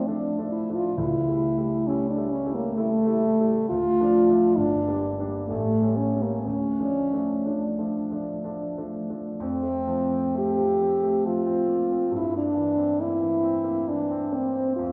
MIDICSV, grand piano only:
0, 0, Header, 1, 2, 480
1, 0, Start_track
1, 0, Key_signature, -1, "minor"
1, 0, Tempo, 890208
1, 525, Time_signature, 3, 2, 24, 8
1, 1479, Tempo, 916031
1, 2919, Tempo, 990099
1, 4359, Tempo, 960000
1, 4842, Key_signature, -1, "major"
1, 5319, Tempo, 878477
1, 7239, Tempo, 913242
1, 7778, End_track
2, 0, Start_track
2, 0, Title_t, "Grand piano"
2, 0, Program_c, 0, 0
2, 0, Control_c, 0, 64, 127
2, 0, Note_on_c, 0, 38, 33
2, 0, Note_on_c, 0, 53, 25
2, 0, Note_on_c, 0, 57, 27
2, 0, Note_on_c, 0, 62, 30
2, 41, Note_off_c, 0, 53, 0
2, 41, Note_on_c, 0, 53, 31
2, 44, Note_off_c, 0, 62, 0
2, 44, Note_on_c, 0, 62, 33
2, 46, Note_off_c, 0, 57, 0
2, 46, Note_on_c, 0, 57, 29
2, 187, Note_off_c, 0, 53, 0
2, 189, Note_off_c, 0, 62, 0
2, 190, Note_off_c, 0, 57, 0
2, 203, Note_on_c, 0, 53, 28
2, 209, Note_on_c, 0, 57, 31
2, 212, Note_on_c, 0, 62, 33
2, 349, Note_off_c, 0, 53, 0
2, 352, Note_off_c, 0, 57, 0
2, 353, Note_off_c, 0, 62, 0
2, 374, Note_on_c, 0, 53, 27
2, 375, Note_on_c, 0, 57, 28
2, 378, Note_on_c, 0, 62, 28
2, 514, Note_off_c, 0, 53, 0
2, 515, Note_off_c, 0, 57, 0
2, 516, Note_off_c, 0, 62, 0
2, 527, Note_on_c, 0, 37, 40
2, 535, Note_off_c, 0, 38, 0
2, 535, Control_c, 0, 64, 0
2, 617, Control_c, 0, 64, 127
2, 680, Note_off_c, 0, 37, 0
2, 689, Note_on_c, 0, 55, 27
2, 689, Note_on_c, 0, 57, 29
2, 697, Note_on_c, 0, 64, 30
2, 829, Note_off_c, 0, 55, 0
2, 829, Note_off_c, 0, 57, 0
2, 833, Note_off_c, 0, 64, 0
2, 848, Note_on_c, 0, 55, 30
2, 848, Note_on_c, 0, 57, 30
2, 849, Note_on_c, 0, 64, 30
2, 988, Note_off_c, 0, 55, 0
2, 989, Note_off_c, 0, 57, 0
2, 989, Note_off_c, 0, 64, 0
2, 1017, Note_on_c, 0, 57, 32
2, 1018, Note_on_c, 0, 55, 30
2, 1020, Note_on_c, 0, 64, 36
2, 1153, Note_off_c, 0, 57, 0
2, 1154, Note_off_c, 0, 55, 0
2, 1155, Note_off_c, 0, 64, 0
2, 1168, Note_on_c, 0, 55, 32
2, 1170, Note_on_c, 0, 57, 33
2, 1172, Note_on_c, 0, 64, 35
2, 1308, Note_off_c, 0, 55, 0
2, 1309, Note_off_c, 0, 57, 0
2, 1310, Note_off_c, 0, 64, 0
2, 1323, Note_on_c, 0, 55, 35
2, 1324, Note_on_c, 0, 57, 36
2, 1325, Note_on_c, 0, 64, 37
2, 1465, Note_off_c, 0, 55, 0
2, 1466, Note_off_c, 0, 57, 0
2, 1467, Note_off_c, 0, 64, 0
2, 1492, Note_on_c, 0, 55, 36
2, 1495, Note_on_c, 0, 57, 37
2, 1497, Note_on_c, 0, 64, 41
2, 1630, Note_off_c, 0, 55, 0
2, 1632, Note_off_c, 0, 57, 0
2, 1633, Note_off_c, 0, 64, 0
2, 1648, Note_on_c, 0, 55, 39
2, 1648, Note_on_c, 0, 64, 42
2, 1649, Note_on_c, 0, 57, 38
2, 1793, Note_off_c, 0, 55, 0
2, 1793, Note_off_c, 0, 64, 0
2, 1794, Note_off_c, 0, 57, 0
2, 1821, Note_on_c, 0, 55, 36
2, 1824, Note_on_c, 0, 64, 35
2, 1825, Note_on_c, 0, 57, 34
2, 1960, Note_off_c, 0, 55, 0
2, 1962, Note_off_c, 0, 57, 0
2, 1962, Note_off_c, 0, 64, 0
2, 1977, Control_c, 0, 64, 0
2, 1983, Note_on_c, 0, 38, 47
2, 2066, Control_c, 0, 64, 127
2, 2129, Note_off_c, 0, 38, 0
2, 2138, Note_on_c, 0, 53, 32
2, 2141, Note_on_c, 0, 57, 29
2, 2143, Note_on_c, 0, 62, 37
2, 2272, Note_off_c, 0, 53, 0
2, 2274, Note_off_c, 0, 57, 0
2, 2275, Note_off_c, 0, 62, 0
2, 2291, Note_on_c, 0, 53, 37
2, 2291, Note_on_c, 0, 57, 35
2, 2295, Note_on_c, 0, 62, 36
2, 2428, Note_off_c, 0, 53, 0
2, 2428, Note_off_c, 0, 57, 0
2, 2430, Note_off_c, 0, 62, 0
2, 2437, Note_on_c, 0, 31, 46
2, 2446, Control_c, 0, 64, 0
2, 2546, Control_c, 0, 64, 127
2, 2591, Note_off_c, 0, 31, 0
2, 2596, Note_on_c, 0, 55, 37
2, 2599, Note_on_c, 0, 58, 34
2, 2603, Note_on_c, 0, 62, 35
2, 2740, Note_off_c, 0, 55, 0
2, 2742, Note_off_c, 0, 58, 0
2, 2745, Note_off_c, 0, 62, 0
2, 2758, Note_on_c, 0, 55, 36
2, 2767, Note_on_c, 0, 58, 32
2, 2769, Note_on_c, 0, 62, 36
2, 2904, Note_off_c, 0, 55, 0
2, 2909, Note_off_c, 0, 58, 0
2, 2910, Note_off_c, 0, 62, 0
2, 2922, Note_on_c, 0, 33, 44
2, 2929, Control_c, 0, 64, 0
2, 3023, Control_c, 0, 64, 127
2, 3069, Note_off_c, 0, 33, 0
2, 3078, Note_on_c, 0, 55, 33
2, 3082, Note_on_c, 0, 57, 30
2, 3084, Note_on_c, 0, 61, 34
2, 3216, Note_off_c, 0, 55, 0
2, 3219, Note_off_c, 0, 57, 0
2, 3220, Note_off_c, 0, 61, 0
2, 3239, Note_on_c, 0, 55, 26
2, 3241, Note_on_c, 0, 57, 29
2, 3247, Note_on_c, 0, 61, 31
2, 3379, Note_off_c, 0, 55, 0
2, 3380, Note_off_c, 0, 57, 0
2, 3384, Note_off_c, 0, 61, 0
2, 3390, Note_on_c, 0, 38, 36
2, 3400, Control_c, 0, 64, 0
2, 3501, Control_c, 0, 64, 127
2, 3548, Note_off_c, 0, 38, 0
2, 3549, Note_on_c, 0, 53, 24
2, 3556, Note_on_c, 0, 57, 23
2, 3557, Note_on_c, 0, 62, 28
2, 3697, Note_off_c, 0, 53, 0
2, 3701, Note_off_c, 0, 57, 0
2, 3701, Note_off_c, 0, 62, 0
2, 3712, Note_on_c, 0, 53, 22
2, 3715, Note_on_c, 0, 57, 25
2, 3718, Note_on_c, 0, 62, 27
2, 3858, Note_off_c, 0, 53, 0
2, 3860, Note_off_c, 0, 57, 0
2, 3862, Note_off_c, 0, 62, 0
2, 3871, Note_on_c, 0, 53, 25
2, 3874, Note_on_c, 0, 62, 26
2, 3875, Note_on_c, 0, 57, 25
2, 4019, Note_off_c, 0, 53, 0
2, 4020, Note_off_c, 0, 62, 0
2, 4021, Note_off_c, 0, 57, 0
2, 4031, Note_on_c, 0, 53, 25
2, 4032, Note_on_c, 0, 57, 24
2, 4039, Note_on_c, 0, 62, 26
2, 4179, Note_off_c, 0, 53, 0
2, 4180, Note_off_c, 0, 57, 0
2, 4184, Note_off_c, 0, 62, 0
2, 4190, Note_on_c, 0, 53, 24
2, 4193, Note_on_c, 0, 57, 23
2, 4195, Note_on_c, 0, 62, 25
2, 4338, Note_off_c, 0, 53, 0
2, 4340, Note_off_c, 0, 57, 0
2, 4340, Note_off_c, 0, 62, 0
2, 4350, Note_on_c, 0, 62, 26
2, 4351, Note_on_c, 0, 53, 25
2, 4353, Note_on_c, 0, 57, 25
2, 4501, Note_off_c, 0, 62, 0
2, 4502, Note_off_c, 0, 53, 0
2, 4503, Note_off_c, 0, 57, 0
2, 4515, Note_on_c, 0, 53, 26
2, 4516, Note_on_c, 0, 62, 26
2, 4519, Note_on_c, 0, 57, 25
2, 4666, Note_off_c, 0, 53, 0
2, 4666, Note_off_c, 0, 62, 0
2, 4668, Note_off_c, 0, 57, 0
2, 4676, Note_on_c, 0, 53, 21
2, 4677, Note_on_c, 0, 57, 22
2, 4679, Note_on_c, 0, 62, 26
2, 4821, Note_off_c, 0, 53, 0
2, 4822, Note_off_c, 0, 57, 0
2, 4823, Note_off_c, 0, 62, 0
2, 4828, Note_on_c, 0, 41, 44
2, 4852, Control_c, 0, 64, 0
2, 4931, Control_c, 0, 64, 127
2, 4942, Note_on_c, 0, 57, 31
2, 5065, Note_on_c, 0, 53, 35
2, 5144, Note_off_c, 0, 57, 0
2, 5184, Note_on_c, 0, 60, 33
2, 5265, Note_off_c, 0, 53, 0
2, 5301, Note_on_c, 0, 57, 33
2, 5386, Note_off_c, 0, 60, 0
2, 5427, Note_on_c, 0, 53, 34
2, 5509, Note_off_c, 0, 57, 0
2, 5558, Note_on_c, 0, 60, 34
2, 5631, Note_off_c, 0, 53, 0
2, 5670, Note_on_c, 0, 57, 35
2, 5756, Note_off_c, 0, 60, 0
2, 5795, Note_on_c, 0, 53, 36
2, 5871, Note_off_c, 0, 57, 0
2, 5910, Note_on_c, 0, 60, 40
2, 5994, Note_off_c, 0, 53, 0
2, 6026, Note_on_c, 0, 58, 30
2, 6110, Note_off_c, 0, 60, 0
2, 6156, Note_off_c, 0, 58, 0
2, 6157, Note_on_c, 0, 60, 35
2, 6256, Note_off_c, 0, 41, 0
2, 6264, Note_on_c, 0, 43, 40
2, 6281, Note_off_c, 0, 60, 0
2, 6294, Control_c, 0, 64, 0
2, 6385, Note_on_c, 0, 58, 29
2, 6394, Control_c, 0, 64, 127
2, 6500, Note_on_c, 0, 52, 36
2, 6585, Note_off_c, 0, 58, 0
2, 6622, Note_on_c, 0, 60, 32
2, 6702, Note_off_c, 0, 52, 0
2, 6748, Note_on_c, 0, 58, 36
2, 6822, Note_off_c, 0, 60, 0
2, 6862, Note_on_c, 0, 52, 32
2, 6945, Note_off_c, 0, 58, 0
2, 6983, Note_on_c, 0, 60, 36
2, 7062, Note_off_c, 0, 52, 0
2, 7100, Note_on_c, 0, 58, 37
2, 7182, Note_off_c, 0, 60, 0
2, 7232, Note_on_c, 0, 52, 36
2, 7299, Note_off_c, 0, 58, 0
2, 7351, Note_on_c, 0, 60, 38
2, 7425, Note_off_c, 0, 52, 0
2, 7463, Note_on_c, 0, 58, 32
2, 7547, Note_off_c, 0, 60, 0
2, 7586, Note_on_c, 0, 60, 36
2, 7591, Note_off_c, 0, 58, 0
2, 7687, Note_off_c, 0, 43, 0
2, 7707, Note_on_c, 0, 41, 44
2, 7712, Note_off_c, 0, 60, 0
2, 7729, Control_c, 0, 64, 0
2, 7778, Note_off_c, 0, 41, 0
2, 7778, End_track
0, 0, End_of_file